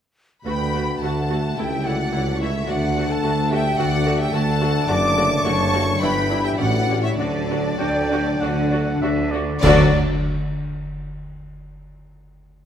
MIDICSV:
0, 0, Header, 1, 14, 480
1, 0, Start_track
1, 0, Key_signature, 2, "major"
1, 0, Tempo, 555556
1, 396, Time_signature, 4, 2, 24, 8
1, 4707, Tempo, 571429
1, 5667, Tempo, 604230
1, 10482, End_track
2, 0, Start_track
2, 0, Title_t, "Flute"
2, 0, Program_c, 0, 73
2, 397, Note_on_c, 0, 83, 56
2, 886, Note_on_c, 0, 81, 47
2, 899, Note_off_c, 0, 83, 0
2, 1355, Note_off_c, 0, 81, 0
2, 1360, Note_on_c, 0, 79, 55
2, 1610, Note_on_c, 0, 78, 56
2, 1623, Note_off_c, 0, 79, 0
2, 2087, Note_off_c, 0, 78, 0
2, 2094, Note_on_c, 0, 76, 51
2, 2147, Note_off_c, 0, 76, 0
2, 2323, Note_on_c, 0, 78, 62
2, 2693, Note_on_c, 0, 81, 65
2, 2706, Note_off_c, 0, 78, 0
2, 3054, Note_on_c, 0, 79, 63
2, 3067, Note_off_c, 0, 81, 0
2, 3285, Note_on_c, 0, 78, 70
2, 3298, Note_off_c, 0, 79, 0
2, 3636, Note_off_c, 0, 78, 0
2, 3643, Note_on_c, 0, 79, 62
2, 3694, Note_off_c, 0, 79, 0
2, 3764, Note_on_c, 0, 81, 74
2, 4248, Note_on_c, 0, 86, 84
2, 4261, Note_off_c, 0, 81, 0
2, 4717, Note_off_c, 0, 86, 0
2, 4723, Note_on_c, 0, 85, 82
2, 5181, Note_off_c, 0, 85, 0
2, 5200, Note_on_c, 0, 83, 79
2, 5547, Note_off_c, 0, 83, 0
2, 5567, Note_on_c, 0, 79, 62
2, 5617, Note_off_c, 0, 79, 0
2, 5683, Note_on_c, 0, 78, 64
2, 6023, Note_off_c, 0, 78, 0
2, 6050, Note_on_c, 0, 76, 58
2, 6155, Note_off_c, 0, 76, 0
2, 6162, Note_on_c, 0, 74, 65
2, 7818, Note_off_c, 0, 74, 0
2, 8092, Note_on_c, 0, 74, 91
2, 8353, Note_off_c, 0, 74, 0
2, 10482, End_track
3, 0, Start_track
3, 0, Title_t, "Violin section"
3, 0, Program_c, 1, 48
3, 397, Note_on_c, 1, 83, 59
3, 849, Note_off_c, 1, 83, 0
3, 887, Note_on_c, 1, 81, 54
3, 1364, Note_on_c, 1, 79, 62
3, 1368, Note_off_c, 1, 81, 0
3, 1606, Note_off_c, 1, 79, 0
3, 1608, Note_on_c, 1, 78, 61
3, 2086, Note_off_c, 1, 78, 0
3, 2093, Note_on_c, 1, 76, 59
3, 2324, Note_off_c, 1, 76, 0
3, 2334, Note_on_c, 1, 78, 66
3, 2688, Note_off_c, 1, 78, 0
3, 2694, Note_on_c, 1, 81, 78
3, 3045, Note_off_c, 1, 81, 0
3, 3047, Note_on_c, 1, 79, 78
3, 3276, Note_off_c, 1, 79, 0
3, 3280, Note_on_c, 1, 78, 82
3, 3633, Note_off_c, 1, 78, 0
3, 3648, Note_on_c, 1, 79, 71
3, 3756, Note_off_c, 1, 79, 0
3, 3759, Note_on_c, 1, 81, 80
3, 4225, Note_on_c, 1, 86, 87
3, 4232, Note_off_c, 1, 81, 0
3, 4706, Note_off_c, 1, 86, 0
3, 4706, Note_on_c, 1, 85, 92
3, 5180, Note_on_c, 1, 83, 84
3, 5182, Note_off_c, 1, 85, 0
3, 5544, Note_off_c, 1, 83, 0
3, 5551, Note_on_c, 1, 79, 79
3, 5599, Note_off_c, 1, 79, 0
3, 5666, Note_on_c, 1, 78, 82
3, 6015, Note_off_c, 1, 78, 0
3, 6025, Note_on_c, 1, 76, 64
3, 6132, Note_on_c, 1, 74, 72
3, 6142, Note_off_c, 1, 76, 0
3, 7803, Note_off_c, 1, 74, 0
3, 8076, Note_on_c, 1, 74, 89
3, 8344, Note_off_c, 1, 74, 0
3, 10482, End_track
4, 0, Start_track
4, 0, Title_t, "Oboe"
4, 0, Program_c, 2, 68
4, 6620, Note_on_c, 2, 79, 76
4, 7107, Note_on_c, 2, 78, 61
4, 7119, Note_off_c, 2, 79, 0
4, 7587, Note_off_c, 2, 78, 0
4, 7592, Note_on_c, 2, 76, 64
4, 7828, Note_on_c, 2, 74, 59
4, 7840, Note_off_c, 2, 76, 0
4, 8076, Note_off_c, 2, 74, 0
4, 10482, End_track
5, 0, Start_track
5, 0, Title_t, "Violin section"
5, 0, Program_c, 3, 48
5, 400, Note_on_c, 3, 79, 52
5, 851, Note_off_c, 3, 79, 0
5, 882, Note_on_c, 3, 78, 45
5, 1356, Note_off_c, 3, 78, 0
5, 1368, Note_on_c, 3, 76, 52
5, 1607, Note_off_c, 3, 76, 0
5, 1609, Note_on_c, 3, 74, 55
5, 2071, Note_on_c, 3, 73, 54
5, 2087, Note_off_c, 3, 74, 0
5, 2311, Note_on_c, 3, 74, 56
5, 2317, Note_off_c, 3, 73, 0
5, 2667, Note_on_c, 3, 78, 56
5, 2669, Note_off_c, 3, 74, 0
5, 3029, Note_on_c, 3, 76, 64
5, 3032, Note_off_c, 3, 78, 0
5, 3267, Note_off_c, 3, 76, 0
5, 3279, Note_on_c, 3, 74, 70
5, 3626, Note_off_c, 3, 74, 0
5, 3626, Note_on_c, 3, 76, 62
5, 3748, Note_off_c, 3, 76, 0
5, 3755, Note_on_c, 3, 78, 69
5, 4220, Note_on_c, 3, 81, 70
5, 4230, Note_off_c, 3, 78, 0
5, 4693, Note_off_c, 3, 81, 0
5, 4704, Note_on_c, 3, 81, 78
5, 5171, Note_off_c, 3, 81, 0
5, 5182, Note_on_c, 3, 79, 69
5, 5538, Note_off_c, 3, 79, 0
5, 5541, Note_on_c, 3, 76, 63
5, 5658, Note_on_c, 3, 74, 61
5, 5666, Note_off_c, 3, 76, 0
5, 6016, Note_on_c, 3, 73, 57
5, 6018, Note_off_c, 3, 74, 0
5, 6065, Note_off_c, 3, 73, 0
5, 6136, Note_on_c, 3, 69, 62
5, 7805, Note_off_c, 3, 69, 0
5, 8071, Note_on_c, 3, 62, 77
5, 8342, Note_off_c, 3, 62, 0
5, 10482, End_track
6, 0, Start_track
6, 0, Title_t, "Clarinet"
6, 0, Program_c, 4, 71
6, 400, Note_on_c, 4, 71, 59
6, 888, Note_on_c, 4, 69, 46
6, 901, Note_off_c, 4, 71, 0
6, 1367, Note_off_c, 4, 69, 0
6, 1372, Note_on_c, 4, 67, 47
6, 1614, Note_on_c, 4, 66, 53
6, 1627, Note_off_c, 4, 67, 0
6, 2084, Note_off_c, 4, 66, 0
6, 2089, Note_on_c, 4, 64, 56
6, 2314, Note_on_c, 4, 66, 64
6, 2327, Note_off_c, 4, 64, 0
6, 2678, Note_on_c, 4, 69, 61
6, 2691, Note_off_c, 4, 66, 0
6, 3030, Note_on_c, 4, 67, 59
6, 3043, Note_off_c, 4, 69, 0
6, 3276, Note_on_c, 4, 66, 63
6, 3289, Note_off_c, 4, 67, 0
6, 3626, Note_on_c, 4, 67, 60
6, 3639, Note_off_c, 4, 66, 0
6, 3740, Note_on_c, 4, 69, 75
6, 3753, Note_off_c, 4, 67, 0
6, 4219, Note_off_c, 4, 69, 0
6, 4225, Note_on_c, 4, 74, 77
6, 4700, Note_on_c, 4, 73, 78
6, 4713, Note_off_c, 4, 74, 0
6, 5179, Note_off_c, 4, 73, 0
6, 5184, Note_on_c, 4, 71, 71
6, 5536, Note_off_c, 4, 71, 0
6, 5541, Note_on_c, 4, 67, 59
6, 5658, Note_on_c, 4, 66, 69
6, 5671, Note_off_c, 4, 67, 0
6, 6009, Note_on_c, 4, 64, 57
6, 6021, Note_off_c, 4, 66, 0
6, 6127, Note_off_c, 4, 64, 0
6, 6132, Note_on_c, 4, 62, 68
6, 7803, Note_off_c, 4, 62, 0
6, 8082, Note_on_c, 4, 69, 86
6, 8284, Note_off_c, 4, 69, 0
6, 10482, End_track
7, 0, Start_track
7, 0, Title_t, "Viola section"
7, 0, Program_c, 5, 48
7, 389, Note_on_c, 5, 57, 37
7, 390, Note_on_c, 5, 66, 36
7, 459, Note_off_c, 5, 57, 0
7, 459, Note_off_c, 5, 66, 0
7, 634, Note_on_c, 5, 57, 39
7, 637, Note_on_c, 5, 66, 38
7, 703, Note_off_c, 5, 57, 0
7, 706, Note_off_c, 5, 66, 0
7, 887, Note_on_c, 5, 57, 41
7, 889, Note_on_c, 5, 66, 38
7, 956, Note_off_c, 5, 57, 0
7, 958, Note_off_c, 5, 66, 0
7, 1118, Note_on_c, 5, 66, 38
7, 1121, Note_on_c, 5, 57, 39
7, 1187, Note_off_c, 5, 66, 0
7, 1190, Note_off_c, 5, 57, 0
7, 1366, Note_on_c, 5, 64, 40
7, 1367, Note_on_c, 5, 57, 40
7, 1435, Note_off_c, 5, 64, 0
7, 1436, Note_off_c, 5, 57, 0
7, 1600, Note_on_c, 5, 57, 41
7, 1605, Note_on_c, 5, 64, 38
7, 1670, Note_off_c, 5, 57, 0
7, 1674, Note_off_c, 5, 64, 0
7, 1837, Note_on_c, 5, 64, 38
7, 1838, Note_on_c, 5, 57, 40
7, 1906, Note_off_c, 5, 64, 0
7, 1907, Note_off_c, 5, 57, 0
7, 2080, Note_on_c, 5, 57, 40
7, 2080, Note_on_c, 5, 64, 38
7, 2149, Note_off_c, 5, 57, 0
7, 2149, Note_off_c, 5, 64, 0
7, 2313, Note_on_c, 5, 57, 45
7, 2313, Note_on_c, 5, 66, 44
7, 2382, Note_off_c, 5, 57, 0
7, 2382, Note_off_c, 5, 66, 0
7, 2561, Note_on_c, 5, 66, 47
7, 2565, Note_on_c, 5, 57, 50
7, 2630, Note_off_c, 5, 66, 0
7, 2634, Note_off_c, 5, 57, 0
7, 2792, Note_on_c, 5, 66, 45
7, 2793, Note_on_c, 5, 57, 46
7, 2861, Note_off_c, 5, 66, 0
7, 2862, Note_off_c, 5, 57, 0
7, 3036, Note_on_c, 5, 66, 50
7, 3041, Note_on_c, 5, 57, 49
7, 3105, Note_off_c, 5, 66, 0
7, 3110, Note_off_c, 5, 57, 0
7, 3269, Note_on_c, 5, 66, 52
7, 3271, Note_on_c, 5, 57, 51
7, 3338, Note_off_c, 5, 66, 0
7, 3340, Note_off_c, 5, 57, 0
7, 3506, Note_on_c, 5, 57, 47
7, 3508, Note_on_c, 5, 66, 51
7, 3575, Note_off_c, 5, 57, 0
7, 3577, Note_off_c, 5, 66, 0
7, 3747, Note_on_c, 5, 57, 46
7, 3747, Note_on_c, 5, 66, 49
7, 3816, Note_off_c, 5, 57, 0
7, 3816, Note_off_c, 5, 66, 0
7, 3981, Note_on_c, 5, 57, 51
7, 3983, Note_on_c, 5, 66, 51
7, 4050, Note_off_c, 5, 57, 0
7, 4052, Note_off_c, 5, 66, 0
7, 4219, Note_on_c, 5, 57, 56
7, 4221, Note_on_c, 5, 66, 55
7, 4288, Note_off_c, 5, 57, 0
7, 4290, Note_off_c, 5, 66, 0
7, 4461, Note_on_c, 5, 57, 55
7, 4461, Note_on_c, 5, 66, 54
7, 4530, Note_off_c, 5, 57, 0
7, 4530, Note_off_c, 5, 66, 0
7, 4710, Note_on_c, 5, 57, 55
7, 4710, Note_on_c, 5, 66, 54
7, 4777, Note_off_c, 5, 57, 0
7, 4777, Note_off_c, 5, 66, 0
7, 4942, Note_on_c, 5, 57, 52
7, 4944, Note_on_c, 5, 66, 53
7, 5009, Note_off_c, 5, 57, 0
7, 5011, Note_off_c, 5, 66, 0
7, 5187, Note_on_c, 5, 62, 54
7, 5188, Note_on_c, 5, 64, 55
7, 5254, Note_off_c, 5, 62, 0
7, 5255, Note_off_c, 5, 64, 0
7, 5420, Note_on_c, 5, 64, 51
7, 5424, Note_on_c, 5, 62, 50
7, 5487, Note_off_c, 5, 64, 0
7, 5491, Note_off_c, 5, 62, 0
7, 5664, Note_on_c, 5, 67, 46
7, 5665, Note_on_c, 5, 61, 45
7, 5728, Note_off_c, 5, 61, 0
7, 5728, Note_off_c, 5, 67, 0
7, 5907, Note_on_c, 5, 67, 45
7, 5908, Note_on_c, 5, 61, 50
7, 5971, Note_off_c, 5, 61, 0
7, 5971, Note_off_c, 5, 67, 0
7, 6146, Note_on_c, 5, 62, 51
7, 6149, Note_on_c, 5, 66, 49
7, 6210, Note_off_c, 5, 62, 0
7, 6212, Note_off_c, 5, 66, 0
7, 6393, Note_on_c, 5, 66, 49
7, 6394, Note_on_c, 5, 62, 52
7, 6456, Note_off_c, 5, 66, 0
7, 6457, Note_off_c, 5, 62, 0
7, 6629, Note_on_c, 5, 62, 53
7, 6629, Note_on_c, 5, 66, 48
7, 6692, Note_off_c, 5, 62, 0
7, 6693, Note_off_c, 5, 66, 0
7, 6874, Note_on_c, 5, 62, 54
7, 6876, Note_on_c, 5, 66, 51
7, 6937, Note_off_c, 5, 62, 0
7, 6939, Note_off_c, 5, 66, 0
7, 7115, Note_on_c, 5, 66, 51
7, 7116, Note_on_c, 5, 62, 53
7, 7178, Note_off_c, 5, 66, 0
7, 7180, Note_off_c, 5, 62, 0
7, 7356, Note_on_c, 5, 62, 50
7, 7356, Note_on_c, 5, 66, 50
7, 7420, Note_off_c, 5, 62, 0
7, 7420, Note_off_c, 5, 66, 0
7, 7598, Note_on_c, 5, 62, 49
7, 7600, Note_on_c, 5, 66, 50
7, 7662, Note_off_c, 5, 62, 0
7, 7664, Note_off_c, 5, 66, 0
7, 7841, Note_on_c, 5, 62, 52
7, 7841, Note_on_c, 5, 66, 54
7, 7904, Note_off_c, 5, 62, 0
7, 7904, Note_off_c, 5, 66, 0
7, 8088, Note_on_c, 5, 66, 74
7, 8089, Note_on_c, 5, 62, 74
7, 8351, Note_off_c, 5, 62, 0
7, 8351, Note_off_c, 5, 66, 0
7, 10482, End_track
8, 0, Start_track
8, 0, Title_t, "Harp"
8, 0, Program_c, 6, 46
8, 397, Note_on_c, 6, 50, 41
8, 563, Note_on_c, 6, 62, 32
8, 727, Note_on_c, 6, 57, 32
8, 891, Note_on_c, 6, 66, 35
8, 1201, Note_off_c, 6, 66, 0
8, 1211, Note_on_c, 6, 66, 37
8, 1374, Note_on_c, 6, 49, 45
8, 1386, Note_off_c, 6, 50, 0
8, 1387, Note_off_c, 6, 62, 0
8, 1388, Note_off_c, 6, 66, 0
8, 1532, Note_on_c, 6, 55, 35
8, 1678, Note_off_c, 6, 57, 0
8, 1689, Note_on_c, 6, 57, 38
8, 1848, Note_on_c, 6, 64, 42
8, 2009, Note_on_c, 6, 69, 36
8, 2159, Note_off_c, 6, 64, 0
8, 2169, Note_on_c, 6, 64, 38
8, 2323, Note_on_c, 6, 50, 51
8, 2346, Note_off_c, 6, 64, 0
8, 2347, Note_off_c, 6, 55, 0
8, 2348, Note_off_c, 6, 49, 0
8, 2485, Note_on_c, 6, 62, 38
8, 2635, Note_off_c, 6, 57, 0
8, 2645, Note_on_c, 6, 57, 42
8, 2807, Note_on_c, 6, 66, 44
8, 2959, Note_off_c, 6, 69, 0
8, 2969, Note_on_c, 6, 69, 44
8, 3115, Note_off_c, 6, 66, 0
8, 3126, Note_on_c, 6, 66, 45
8, 3281, Note_off_c, 6, 50, 0
8, 3291, Note_on_c, 6, 50, 49
8, 3435, Note_off_c, 6, 62, 0
8, 3445, Note_on_c, 6, 62, 44
8, 3591, Note_off_c, 6, 57, 0
8, 3602, Note_on_c, 6, 57, 45
8, 3750, Note_off_c, 6, 66, 0
8, 3760, Note_on_c, 6, 66, 52
8, 3907, Note_off_c, 6, 69, 0
8, 4070, Note_off_c, 6, 66, 0
8, 4080, Note_on_c, 6, 66, 47
8, 4236, Note_on_c, 6, 42, 63
8, 4255, Note_off_c, 6, 50, 0
8, 4396, Note_on_c, 6, 54, 44
8, 4544, Note_off_c, 6, 57, 0
8, 4555, Note_on_c, 6, 57, 50
8, 4709, Note_off_c, 6, 66, 0
8, 4719, Note_on_c, 6, 66, 55
8, 4874, Note_on_c, 6, 69, 52
8, 5023, Note_off_c, 6, 66, 0
8, 5033, Note_on_c, 6, 66, 50
8, 5183, Note_on_c, 6, 43, 59
8, 5205, Note_off_c, 6, 57, 0
8, 5206, Note_off_c, 6, 42, 0
8, 5206, Note_off_c, 6, 54, 0
8, 5206, Note_off_c, 6, 66, 0
8, 5206, Note_off_c, 6, 69, 0
8, 5338, Note_off_c, 6, 62, 0
8, 5348, Note_on_c, 6, 62, 47
8, 5514, Note_on_c, 6, 64, 42
8, 5518, Note_on_c, 6, 67, 49
8, 5673, Note_on_c, 6, 45, 63
8, 5687, Note_off_c, 6, 43, 0
8, 5689, Note_off_c, 6, 62, 0
8, 5826, Note_on_c, 6, 61, 43
8, 5975, Note_off_c, 6, 64, 0
8, 5980, Note_off_c, 6, 67, 0
8, 5985, Note_on_c, 6, 64, 41
8, 5990, Note_on_c, 6, 67, 42
8, 6144, Note_on_c, 6, 50, 52
8, 6163, Note_off_c, 6, 61, 0
8, 6163, Note_off_c, 6, 64, 0
8, 6165, Note_off_c, 6, 45, 0
8, 6166, Note_off_c, 6, 67, 0
8, 6306, Note_on_c, 6, 57, 43
8, 6472, Note_on_c, 6, 62, 40
8, 6633, Note_on_c, 6, 66, 44
8, 6791, Note_on_c, 6, 69, 50
8, 6944, Note_off_c, 6, 66, 0
8, 6953, Note_on_c, 6, 66, 47
8, 7102, Note_off_c, 6, 50, 0
8, 7112, Note_on_c, 6, 50, 46
8, 7270, Note_off_c, 6, 57, 0
8, 7280, Note_on_c, 6, 57, 47
8, 7432, Note_off_c, 6, 62, 0
8, 7441, Note_on_c, 6, 62, 49
8, 7591, Note_off_c, 6, 66, 0
8, 7601, Note_on_c, 6, 66, 50
8, 7754, Note_off_c, 6, 69, 0
8, 7763, Note_on_c, 6, 69, 46
8, 7920, Note_off_c, 6, 66, 0
8, 7929, Note_on_c, 6, 66, 47
8, 8064, Note_off_c, 6, 50, 0
8, 8068, Note_on_c, 6, 50, 75
8, 8076, Note_off_c, 6, 57, 0
8, 8078, Note_off_c, 6, 62, 0
8, 8079, Note_on_c, 6, 57, 73
8, 8081, Note_off_c, 6, 66, 0
8, 8088, Note_on_c, 6, 62, 68
8, 8102, Note_on_c, 6, 66, 73
8, 8112, Note_on_c, 6, 74, 74
8, 8351, Note_off_c, 6, 62, 0
8, 8352, Note_off_c, 6, 50, 0
8, 8352, Note_off_c, 6, 57, 0
8, 8352, Note_off_c, 6, 66, 0
8, 8352, Note_off_c, 6, 74, 0
8, 10014, Note_off_c, 6, 69, 0
8, 10482, End_track
9, 0, Start_track
9, 0, Title_t, "French horn section"
9, 0, Program_c, 7, 60
9, 396, Note_on_c, 7, 66, 41
9, 397, Note_on_c, 7, 57, 43
9, 1332, Note_off_c, 7, 66, 0
9, 1372, Note_on_c, 7, 64, 43
9, 2324, Note_on_c, 7, 62, 51
9, 2328, Note_off_c, 7, 64, 0
9, 4194, Note_off_c, 7, 57, 0
9, 4221, Note_on_c, 7, 57, 60
9, 5160, Note_off_c, 7, 57, 0
9, 5176, Note_on_c, 7, 52, 52
9, 5634, Note_off_c, 7, 62, 0
9, 5665, Note_off_c, 7, 52, 0
9, 5665, Note_on_c, 7, 61, 56
9, 5666, Note_on_c, 7, 55, 54
9, 6130, Note_on_c, 7, 54, 51
9, 6137, Note_on_c, 7, 62, 56
9, 6142, Note_off_c, 7, 55, 0
9, 6142, Note_off_c, 7, 61, 0
9, 7802, Note_off_c, 7, 54, 0
9, 7806, Note_off_c, 7, 62, 0
9, 8081, Note_on_c, 7, 62, 78
9, 8084, Note_on_c, 7, 54, 80
9, 8284, Note_off_c, 7, 62, 0
9, 8285, Note_off_c, 7, 54, 0
9, 10482, End_track
10, 0, Start_track
10, 0, Title_t, "Timpani"
10, 0, Program_c, 8, 47
10, 2317, Note_on_c, 8, 50, 57
10, 3001, Note_off_c, 8, 50, 0
10, 8082, Note_on_c, 8, 50, 98
10, 8304, Note_off_c, 8, 50, 0
10, 10482, End_track
11, 0, Start_track
11, 0, Title_t, "Cello section"
11, 0, Program_c, 10, 48
11, 397, Note_on_c, 10, 38, 45
11, 826, Note_off_c, 10, 38, 0
11, 879, Note_on_c, 10, 38, 50
11, 1307, Note_off_c, 10, 38, 0
11, 1365, Note_on_c, 10, 37, 49
11, 1789, Note_off_c, 10, 37, 0
11, 1841, Note_on_c, 10, 37, 53
11, 2265, Note_off_c, 10, 37, 0
11, 2322, Note_on_c, 10, 38, 57
11, 2745, Note_off_c, 10, 38, 0
11, 2799, Note_on_c, 10, 38, 62
11, 3219, Note_off_c, 10, 38, 0
11, 3273, Note_on_c, 10, 38, 60
11, 3692, Note_off_c, 10, 38, 0
11, 3749, Note_on_c, 10, 38, 67
11, 4171, Note_off_c, 10, 38, 0
11, 4222, Note_on_c, 10, 42, 64
11, 4648, Note_off_c, 10, 42, 0
11, 4698, Note_on_c, 10, 42, 63
11, 5121, Note_off_c, 10, 42, 0
11, 5178, Note_on_c, 10, 43, 66
11, 5608, Note_off_c, 10, 43, 0
11, 5668, Note_on_c, 10, 45, 62
11, 6086, Note_off_c, 10, 45, 0
11, 6141, Note_on_c, 10, 50, 60
11, 6568, Note_off_c, 10, 50, 0
11, 6624, Note_on_c, 10, 50, 64
11, 7051, Note_off_c, 10, 50, 0
11, 7101, Note_on_c, 10, 50, 62
11, 7534, Note_off_c, 10, 50, 0
11, 7599, Note_on_c, 10, 50, 65
11, 8028, Note_off_c, 10, 50, 0
11, 8090, Note_on_c, 10, 50, 76
11, 8352, Note_off_c, 10, 50, 0
11, 10482, End_track
12, 0, Start_track
12, 0, Title_t, "Double bass section"
12, 0, Program_c, 11, 48
12, 402, Note_on_c, 11, 38, 46
12, 828, Note_off_c, 11, 38, 0
12, 887, Note_on_c, 11, 38, 47
12, 1311, Note_off_c, 11, 38, 0
12, 1378, Note_on_c, 11, 37, 48
12, 1795, Note_off_c, 11, 37, 0
12, 1849, Note_on_c, 11, 37, 50
12, 2270, Note_off_c, 11, 37, 0
12, 2332, Note_on_c, 11, 38, 54
12, 2750, Note_off_c, 11, 38, 0
12, 2805, Note_on_c, 11, 38, 58
12, 3223, Note_off_c, 11, 38, 0
12, 3282, Note_on_c, 11, 38, 59
12, 3697, Note_off_c, 11, 38, 0
12, 3752, Note_on_c, 11, 38, 64
12, 4173, Note_off_c, 11, 38, 0
12, 4229, Note_on_c, 11, 30, 66
12, 4652, Note_off_c, 11, 30, 0
12, 4713, Note_on_c, 11, 30, 63
12, 5129, Note_off_c, 11, 30, 0
12, 5182, Note_on_c, 11, 31, 66
12, 5610, Note_off_c, 11, 31, 0
12, 5670, Note_on_c, 11, 33, 64
12, 6087, Note_off_c, 11, 33, 0
12, 6145, Note_on_c, 11, 38, 61
12, 6570, Note_off_c, 11, 38, 0
12, 6628, Note_on_c, 11, 38, 61
12, 7054, Note_off_c, 11, 38, 0
12, 7116, Note_on_c, 11, 38, 61
12, 7541, Note_off_c, 11, 38, 0
12, 7594, Note_on_c, 11, 38, 67
12, 8025, Note_off_c, 11, 38, 0
12, 8084, Note_on_c, 11, 38, 87
12, 8349, Note_off_c, 11, 38, 0
12, 10482, End_track
13, 0, Start_track
13, 0, Title_t, "Tuba"
13, 0, Program_c, 12, 58
13, 394, Note_on_c, 12, 38, 46
13, 825, Note_off_c, 12, 38, 0
13, 879, Note_on_c, 12, 38, 46
13, 1307, Note_off_c, 12, 38, 0
13, 1360, Note_on_c, 12, 37, 48
13, 1786, Note_off_c, 12, 37, 0
13, 1845, Note_on_c, 12, 37, 52
13, 2267, Note_off_c, 12, 37, 0
13, 2318, Note_on_c, 12, 38, 55
13, 2743, Note_off_c, 12, 38, 0
13, 2803, Note_on_c, 12, 38, 57
13, 3221, Note_off_c, 12, 38, 0
13, 3272, Note_on_c, 12, 38, 62
13, 3692, Note_off_c, 12, 38, 0
13, 3753, Note_on_c, 12, 38, 63
13, 4173, Note_off_c, 12, 38, 0
13, 4228, Note_on_c, 12, 30, 67
13, 4651, Note_off_c, 12, 30, 0
13, 4706, Note_on_c, 12, 30, 67
13, 5125, Note_off_c, 12, 30, 0
13, 5185, Note_on_c, 12, 31, 65
13, 5612, Note_off_c, 12, 31, 0
13, 5670, Note_on_c, 12, 33, 69
13, 6024, Note_off_c, 12, 33, 0
13, 6149, Note_on_c, 12, 38, 62
13, 6572, Note_off_c, 12, 38, 0
13, 6627, Note_on_c, 12, 38, 59
13, 7053, Note_off_c, 12, 38, 0
13, 7111, Note_on_c, 12, 38, 62
13, 7539, Note_off_c, 12, 38, 0
13, 7599, Note_on_c, 12, 38, 69
13, 8028, Note_off_c, 12, 38, 0
13, 8088, Note_on_c, 12, 38, 89
13, 8288, Note_off_c, 12, 38, 0
13, 10482, End_track
14, 0, Start_track
14, 0, Title_t, "Drums"
14, 8081, Note_on_c, 9, 35, 71
14, 8081, Note_on_c, 9, 49, 73
14, 8160, Note_off_c, 9, 35, 0
14, 8160, Note_off_c, 9, 49, 0
14, 10482, End_track
0, 0, End_of_file